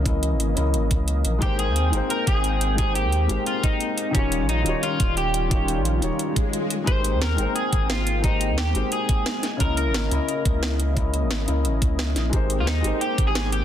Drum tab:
HH |xxxxxxxx|xxxxxxxx|xxxxxxxx|xxxxxxxx|
SD |--------|--------|--------|--------|
BD |o----o--|o----o--|o----o--|o----o--|

HH |xxxxxxxx|xxxxxxxx|xxxxxxxx|xxxxxxxx|
SD |--------|--o---o-|--o---oo|--o---o-|
BD |o----o--|o----o--|o----o--|o----o--|

HH |xxxxxxxx|xxxxxxxx|
SD |--o---oo|--o---o-|
BD |o----o--|o----o--|